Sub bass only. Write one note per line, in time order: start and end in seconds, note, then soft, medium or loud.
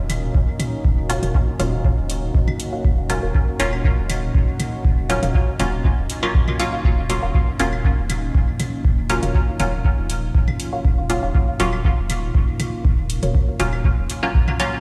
0.00 0.31 D#1 loud
0.35 0.45 D#1 loud
0.85 1.19 D#1 loud
1.23 1.32 D#1 medium
1.60 1.94 D#1 medium
1.98 2.31 D#1 loud
2.35 2.45 D#1 loud
2.85 3.19 D#1 loud
3.23 3.32 D#1 medium
3.60 3.94 D#1 medium
3.98 4.31 D#1 loud
4.35 4.45 D#1 medium
4.85 5.19 D#1 loud
5.23 5.32 D#1 medium
5.60 5.94 D#1 medium
5.98 6.07 D#1 loud
6.35 6.45 A#1 medium
6.85 7.19 D#1 loud
7.23 7.32 D#1 medium
7.60 7.94 D#1 medium
7.98 8.31 D#1 loud
8.35 8.45 D#1 medium
8.85 9.19 D#1 loud
9.23 9.32 D#1 medium
9.60 9.94 D#1 medium
9.98 10.31 D#1 loud
10.35 10.45 D#1 loud
10.85 11.19 D#1 loud
11.23 11.32 D#1 medium
11.60 11.94 D#1 medium
11.98 12.31 D#1 loud
12.35 12.45 D#1 loud
12.85 13.19 D#1 loud
13.23 13.32 D#1 medium
13.60 13.94 D#1 medium
13.98 14.07 D#1 loud
14.35 14.45 A#1 medium